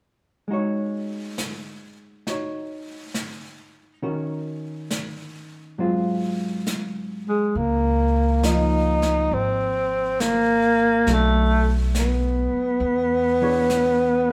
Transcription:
0.48 G#3 D#4 F#4, brush sweep
0.53 C#5
1.38 snare, hi-hat pedal
2.27 D#4 F#4 C#5, brush sweep, snare
3.14 snare, hi-hat pedal
4.02 D#3 C#4 F#4 A#4, brush sweep
4.91 snare, hi-hat pedal
5.78 G#2 F#3 C4 F4, brush sweep
6.67 snare, hi-hat pedal
7.29 G#3
7.55 C#2 A#3, brush sweep
8.43 F3 A#3 D#4, snare, hi-hat pedal
9.02 snare
9.31 G#1 C4, brush sweep
10.20 A#3, snare, hi-hat pedal
11.07 B1 F#3 A3 D4, brush sweep, snare
11.13 A3
11.95 B3, snare, hi-hat pedal
12.53 muted upright bass stroke
12.80 E2, brush sweep
13.42 E3 D4 G#4 C#5
13.70 snare, hi-hat pedal

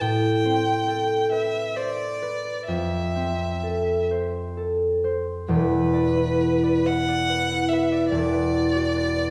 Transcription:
Already playing: C4 B4
0.01 A2 G5
0.44 C4
0.88 A4
1.32 B4 E5
1.76 C5 D5
2.22 B4
2.67 F2 E5
3.15 C4
3.63 A4
4.11 C5
4.57 A4
5.04 C5
5.48 E1 E2 B4
5.71 B4
5.94 D5
6.17 E4
6.40 B4
6.63 D5
6.86 E5 F#5
7.09 D5
7.30 B4
7.52 E4
7.69 B4 E5
7.92 D5
8.11 E1 E2 D5
8.33 B4
8.54 D5
8.75 F#4
8.96 B4
9.17 D5

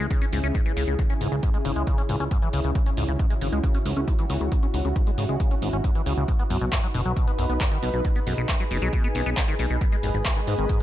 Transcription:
Already playing: C#3 C#4 E4 G#4
0.11 C#3, kick, closed hi-hat
0.22 C#4, closed hi-hat
0.33 C#2 G#2, open hi-hat
0.44 C#2 C#4, closed hi-hat
0.55 G#2, kick, closed hi-hat
0.66 E3, closed hi-hat
0.77 C#2 C#3, open hi-hat
0.88 C#2 C#3, closed hi-hat
0.99 C#3, kick, closed hi-hat
1.10 C#4, closed hi-hat
1.21 C#2 G#2, open hi-hat
1.32 C#2 C#3, closed hi-hat
1.43 G#2, kick, closed hi-hat
1.54 G#3, closed hi-hat
1.65 G#1 C#3, open hi-hat
1.76 C#2 G#3, closed hi-hat
1.87 C#3, kick, closed hi-hat
1.98 C#4, closed hi-hat
2.09 C#2 G#2, open hi-hat
2.20 C#2 C#4, closed hi-hat
2.31 G#2, kick, closed hi-hat
2.42 E3, closed hi-hat
2.53 C#2 C#3, open hi-hat
2.64 C#2 C#3, closed hi-hat
2.75 C#3 F#4, kick, closed hi-hat
2.86 C#4, closed hi-hat
2.97 C#2 G#2, open hi-hat
3.08 C#2 C#3, closed hi-hat
3.19 G#2, kick, closed hi-hat
3.30 G#3, closed hi-hat
3.41 G#1 C#3, open hi-hat
3.52 C#2 G#3, closed hi-hat
3.63 C#3, kick, closed hi-hat
3.75 C#4, closed hi-hat
3.86 C#2 G#2, open hi-hat
3.97 C#2 C#4, closed hi-hat
4.08 G#2, kick, closed hi-hat
4.19 E3, closed hi-hat
4.30 C#2 C#3, open hi-hat
4.41 C#2 C#3, closed hi-hat
4.52 C#3, kick, closed hi-hat
4.63 C#4, closed hi-hat
4.74 C#2 G#2, open hi-hat
4.85 C#2 C#3, closed hi-hat
4.96 G#2, kick, closed hi-hat
5.07 G#3, closed hi-hat
5.18 G#1 C#3, open hi-hat
5.29 C#2 G#3, closed hi-hat
5.40 C#3, kick, closed hi-hat
5.51 C#4, closed hi-hat
5.62 G#1 G#2, open hi-hat
5.73 G#1 C#4, closed hi-hat
5.84 G#2, kick, closed hi-hat
5.95 E3, closed hi-hat
6.06 C#2 C#3, open hi-hat
6.17 C#2 C#3, closed hi-hat
6.28 B2 D#4 B4, kick, closed hi-hat
6.39 B3, closed hi-hat
6.50 B1 F#2, open hi-hat
6.61 B1 B2, closed hi-hat
6.72 F#2, kick, clap, closed hi-hat
6.83 F#3, closed hi-hat
6.94 F#1 B2, open hi-hat
7.05 B1 F#3, closed hi-hat
7.16 B2, kick, closed hi-hat
7.28 B3, closed hi-hat
7.39 B1 F#2, open hi-hat
7.50 B1 B3, closed hi-hat
7.61 F#2, kick, clap, closed hi-hat
7.72 D#3, closed hi-hat
7.83 B1 B2, open hi-hat
7.94 B1 B2, closed hi-hat
8.05 B2 G#4, kick, closed hi-hat
8.16 B3, closed hi-hat
8.27 B1 F#2, open hi-hat
8.38 B1 B2, closed hi-hat
8.49 F#2, kick, clap, closed hi-hat
8.60 F#3, closed hi-hat
8.71 F#1 B2, open hi-hat
8.82 B1 F#3, closed hi-hat
8.93 B2, kick, closed hi-hat
9.04 B3, closed hi-hat
9.15 B1 F#2, open hi-hat
9.26 B1 B3, closed hi-hat
9.37 F#2, kick, clap, closed hi-hat
9.48 D#3, closed hi-hat
9.59 B1 B2, open hi-hat
9.70 B1 B2, closed hi-hat
9.81 G#2 G#3 G#4 B4 D#5, kick, closed hi-hat
9.92 G#3, closed hi-hat
10.03 G#1 D#2, open hi-hat
10.14 G#1 G#2, closed hi-hat
10.25 D#2, kick, clap, closed hi-hat
10.36 D#3, closed hi-hat
10.47 G#2, open hi-hat
10.58 G#1 D#3, closed hi-hat
10.69 G#2, kick, closed hi-hat

